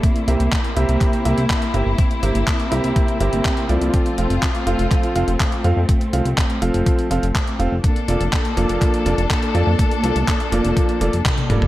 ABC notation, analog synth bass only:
X:1
M:4/4
L:1/16
Q:1/4=123
K:Cmix
V:1 name="Analog synth bass" clef=bass
z2 C,, C,, z2 C,, C,, z2 C,, C,, z2 G,,, G,,, | z2 G,,, G,,, z2 C,, C,, z2 G,,, G,,, z2 C,, C,, | z2 F,,, F,,, z2 F,,, F,,, z2 F,,, F,,, z2 F,, F,, | z2 C,, C,, z2 F,,, F,,, z2 F,,, F,,, z2 F,,, F,,, |
z2 F,,, F,,, z2 F,,, F,,, z2 F,,, F,,, z2 F,, F,, | z2 C,, C,, z2 F,,, F,,, z2 F,,, F,,, z2 F,,, F,,, |]